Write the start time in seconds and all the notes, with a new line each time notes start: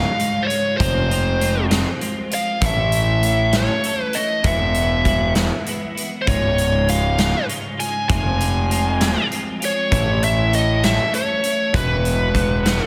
Already playing: G#2 C#3 G#3 F4 F5
0.17 G#2 C#3 G#3 F4, closed hi-hat
0.43 C5
0.47 C#3 G#3 F4 C#5, closed hi-hat
0.77 F1 F2 C3 F3 G#3 C5, kick, closed hi-hat
0.81 C4 F4
1.08 F3 G#3 C4 F4, closed hi-hat
1.39 F3 G#3 C4 F4, closed hi-hat
1.69 F3 G#3 C4 F4, snare, closed hi-hat
1.99 F3 G#3 C4 F4, closed hi-hat
2.30 F3 G#3 C4 F4, closed hi-hat
2.34 F5
2.61 A1 A2 E3 A3 C#4 E4 A4, kick, closed hi-hat
2.66 E5
2.90 A3 C#4 E4 A4, closed hi-hat
3.21 A3 C#4 E4 A4, closed hi-hat
3.51 A3 C#4 E4 A4, snare, closed hi-hat
3.56 C#5
3.82 A3 C#4 E4 A4, closed hi-hat
4.03 B4
4.13 A3 C#4 E4 A4 D#5, closed hi-hat
4.43 E1 E2 B2 E3 G#3 B3 E4, kick, closed hi-hat
4.47 E5
4.74 E3 G#3 B3 E4, closed hi-hat
5.04 E3 G#3 B3 E4, kick, closed hi-hat
5.34 E3 G#3 B3 E4, snare, closed hi-hat
5.65 E3 G#3 B3 E4, closed hi-hat
5.95 E3 G#3 B3 E4, closed hi-hat
6.22 C#2 C5
6.27 C#1 G#2 C#3 G#3 F4 C#5, kick, closed hi-hat
6.55 C#3 G#3 F4, closed hi-hat
6.85 G#2 C#3 G#3 F4, closed hi-hat
6.90 F5
7.16 C#3 G#3 F4, snare, closed hi-hat
7.47 G#2 C#3 G#3 F4, closed hi-hat
7.77 C#3 G#3 F4 G#5, closed hi-hat
8.08 F1 F2 C3 F3 G#3 C4 F4 G#5, kick, closed hi-hat
8.38 F3 G#3 C4 F4, closed hi-hat
8.68 F3 G#3 C4 F4, closed hi-hat
8.99 F3 G#3 C4 F4, snare, closed hi-hat
9.30 F3 G#3 C4 F4, closed hi-hat
9.60 F3 G#3 C4 F4, closed hi-hat
9.65 C#5
9.90 A1 A2 E3 A3 C#4 E4 A4, kick, closed hi-hat
10.21 A3 C#4 E4 A4 E5, closed hi-hat
10.51 A3 C#4 E4 A4 D#5, closed hi-hat
10.82 A3 C#4 E4 A4 E5, snare, closed hi-hat
11.11 A3 C#4 E4 A4 C#5, closed hi-hat
11.42 A3 C#4 E4 A4, closed hi-hat
11.72 E1 E2 B2 E3 G#3 B3 E4 B4, kick, closed hi-hat
12.02 E3 G#3 B3 E4, closed hi-hat
12.33 E3 G#3 B3 E4, kick, closed hi-hat
12.64 E3 G#3 B3 E4, snare, closed hi-hat